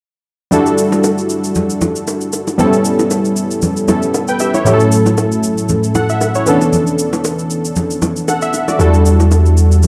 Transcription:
0.51 synth keys G3 D4 E4 F#4 A4, low conga, shaker
0.66 shaker
0.78 shaker
0.92 low bongo, shaker
1.04 high bongo, shaker
1.18 shaker
1.30 shaker
1.44 shaker
1.55 low conga, shaker
1.70 shaker
1.81 low bongo, low conga, shaker
1.96 shaker
2.07 high bongo, shaker
2.21 shaker
2.33 high bongo, shaker
2.47 high bongo, low bongo, shaker
2.58 synth keys G3 B3 C4 E4 A4, low conga, shaker
2.65 synth keys C#4
2.73 shaker
2.85 shaker
2.99 low bongo, shaker
3.11 high bongo, shaker
3.25 shaker
3.36 shaker
3.51 shaker
3.62 low conga, shaker
3.77 shaker
3.88 synth keys G3 B3 C#4 E4 A4, low bongo, low conga, shaker
4.03 shaker
4.14 high bongo, shaker
4.28 synth keys B4 G5, shaker
4.40 synth keys G4 E5, high bongo, shaker
4.54 synth keys E4 C#5, high bongo, low bongo, shaker
4.65 synth keys A2 F#3 A3 C#4 E4 G4, low conga, shaker
4.73 synth keys A4
4.80 shaker
4.92 shaker
5.06 low bongo, shaker
5.18 high bongo, shaker
5.32 shaker
5.43 shaker
5.58 shaker
5.69 low conga, shaker
5.84 shaker
5.95 synth keys A4 F#5, low bongo, low conga, shaker
6.09 synth keys E5, shaker
6.21 high bongo, shaker
6.35 synth keys E4 C#5, shaker
6.46 synth keys E3 B3 C#4 D4 A4, high bongo, shaker
6.61 high bongo, low bongo, shaker
6.73 low conga, shaker
6.87 shaker
6.99 shaker
7.13 low bongo, shaker
7.24 high bongo, shaker
7.39 shaker
7.50 shaker
7.65 shaker
7.76 low conga, shaker
7.91 shaker
8.02 low bongo, low conga, shaker
8.16 shaker
8.28 synth keys A4 F#5, high bongo, shaker
8.42 synth keys E5, shaker
8.53 high bongo, shaker
8.68 synth keys F#4 D5, high bongo, low bongo, shaker
8.79 sub bass E2, synth keys G3 D4 E4 F#4 A4, low conga, shaker
8.94 shaker
9.06 shaker
9.20 low bongo, shaker
9.31 high bongo, shaker
9.46 shaker
9.57 shaker
9.72 shaker
9.83 low conga, shaker

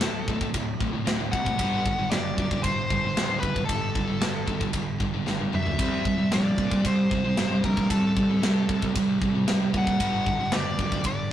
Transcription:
Already playing: lead electric guitar A4
0.01 picked electric bass D1, distorted electric guitar D2 A2, snare, ride bell
0.27 picked electric bass D1, distorted electric guitar D2 A2, kick
0.41 distorted electric guitar D2 A2, kick
0.54 picked electric bass D1, distorted electric guitar D2 A2, kick, ride bell
0.79 picked electric bass D1, distorted electric guitar D2 A2, kick
0.93 distorted electric guitar D2 A2
1.05 picked electric bass D1, distorted electric guitar D2 A2, snare, ride bell
1.20 distorted electric guitar D2 A2
1.31 picked electric bass C2, distorted electric guitar D2 A2, lead electric guitar F#5, kick
1.46 distorted electric guitar D2 A2, kick
1.59 picked electric bass G1, distorted electric guitar G2 D3 G3, kick, ride bell
1.86 picked electric bass G1, distorted electric guitar G2 D3, kick
1.99 distorted electric guitar G2 D3
2.10 picked electric bass F#1, distorted electric guitar G2 D3, lead electric guitar D5, snare, ride bell
2.37 picked electric bass F#2, distorted electric guitar G2 D3, kick
2.51 distorted electric guitar G2 D3, kick
2.63 picked electric bass G1, distorted electric guitar G2 D3, lead electric guitar C5, kick, ride bell
2.90 picked electric bass G1, distorted electric guitar G2 D3, kick
3.04 distorted electric guitar G2 D3
3.16 picked electric bass D1, distorted electric guitar G2 D3, snare, ride bell
3.30 distorted electric guitar G2 D3
3.40 picked electric bass F#1, distorted electric guitar D3, lead electric guitar B4, kick
3.44 distorted electric guitar G2
3.56 distorted electric guitar G2 D3, kick
3.65 picked electric bass G1, lead electric guitar A4, kick, ride bell
3.71 distorted electric guitar G2 D3
3.95 picked electric bass G1, distorted electric guitar G2 D3, kick
4.10 distorted electric guitar G2 D3
4.21 picked electric bass G1, distorted electric guitar G2 D3, snare, ride bell
4.47 picked electric bass G1, distorted electric guitar G2 D3, kick
4.61 distorted electric guitar G2 D3, kick
4.73 picked electric bass G1, distorted electric guitar G2 D3, kick, ride bell
5.00 picked electric bass G1, distorted electric guitar G2 D3, kick
5.14 distorted electric guitar G2 D3
5.26 picked electric bass G1, distorted electric guitar G2 D3, snare
5.39 distorted electric guitar G2 D3, high tom
5.52 picked electric bass F#2, distorted electric guitar G2 D3, lead electric guitar E5, mid tom
5.66 distorted electric guitar G2 D3, floor tom
5.78 picked electric bass C2, distorted electric guitar C3 G3 C4, kick, ride bell
6.05 picked electric bass C2, distorted electric guitar C3 G3, kick
6.17 distorted electric guitar C3 G3
6.31 picked electric bass A#1, distorted electric guitar C3 G3, lead electric guitar D5, snare, ride bell
6.57 picked electric bass A#2, distorted electric guitar C3 G3, kick
6.70 distorted electric guitar C3 G3, kick
6.84 picked electric bass C2, distorted electric guitar C3 G3, lead electric guitar C5, kick, ride bell
7.10 picked electric bass C2, distorted electric guitar C3 G3, kick
7.24 distorted electric guitar C3 G3
7.37 picked electric bass G1, distorted electric guitar C3 G3, snare, ride bell
7.49 distorted electric guitar C3 G3
7.62 picked electric bass A#1, distorted electric guitar C3 G3, lead electric guitar A#4, kick
7.76 distorted electric guitar C3 G3, kick
7.90 picked electric bass C2, distorted electric guitar C3 G3, lead electric guitar A4, kick, ride bell
8.16 picked electric bass C2, distorted electric guitar C3 G3, kick
8.30 distorted electric guitar C3 G3
8.41 picked electric bass C2, distorted electric guitar C3 G3, snare, ride bell
8.69 picked electric bass C2, distorted electric guitar C3 G3, kick
8.82 distorted electric guitar C3 G3, kick
8.94 picked electric bass C2, distorted electric guitar C3 G3, kick, ride bell
9.20 picked electric bass C2, distorted electric guitar C3 G3, kick
9.34 distorted electric guitar C3 G3
9.47 picked electric bass C2, distorted electric guitar C3 G3, snare, ride bell
9.61 distorted electric guitar C3 G3
9.74 picked electric bass A#2, distorted electric guitar C3 G3, lead electric guitar F#5, kick
9.87 distorted electric guitar C3 G3, kick
10.00 picked electric bass G1, distorted electric guitar G2 D3 G3, kick, ride bell
10.26 picked electric bass G1, distorted electric guitar G2 D3, kick
10.40 distorted electric guitar G2 D3
10.52 picked electric bass F#1, distorted electric guitar G2 D3, lead electric guitar D5, snare, ride bell
10.78 picked electric bass F#2, distorted electric guitar G2 D3, kick
10.92 distorted electric guitar G2 D3, kick
11.04 picked electric bass G1, distorted electric guitar G2 D3, lead electric guitar D5, kick, ride bell

